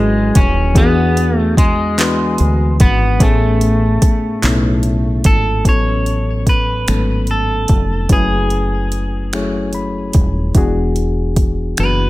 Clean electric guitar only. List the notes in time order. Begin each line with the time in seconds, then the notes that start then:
Already playing: G#3
0.37 C#4
0.77 B3
1.37 A3
1.58 G#3
2.81 B3
3.23 A3
5.26 A4
5.69 C#5
6.49 B4
7.31 A4
8.13 G#4
11.80 B4